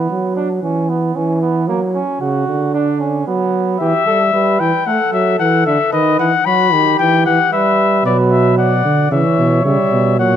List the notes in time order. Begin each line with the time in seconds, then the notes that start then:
Already playing: B3
0.10 F#3
0.36 D4
0.63 E3 C#4
0.89 B3
1.15 E3 C#4
1.41 B3
1.68 F#3 A#3
1.95 C#4
2.20 C#3 F#4
2.47 D3
2.74 D4
3.00 C#4
3.27 F#3 B3
3.80 E3 G4 E5
4.07 G3 A4
4.33 G3 B4
4.60 E3 G5
4.87 A3 A4 F#5
5.13 F#3 E5
5.39 E3 A4 F#5
5.66 D3 E5
5.92 D#3 B4 D#5
6.19 E3 F#5
6.46 F#3 F#4 B5
6.73 D#3 G4
6.99 E3 G5
7.26 E3 F#5
7.52 G3 B4 E5
8.05 B2 F#3 B4 D5
8.31 E5
8.58 D5 F#5
8.85 D3
9.11 C#3 E3 C#5 E5
9.38 B2
9.65 C#3 G3 E5
9.92 B2
10.19 A#2 F#3 C#5 F#5